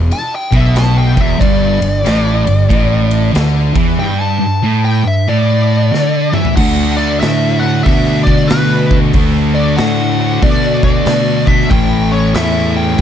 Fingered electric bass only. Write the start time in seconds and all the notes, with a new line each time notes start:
Already playing: E1
0.53 B1
1.17 E1
1.41 G1
1.83 G1
2.07 A1
2.49 G1
2.70 A1
3.36 D2
3.76 E2
6.57 D2
7.22 A2
7.86 B2
8.51 B2
9.14 D2
9.79 A2
10.43 B2
11.06 B2
11.72 A1
12.34 E2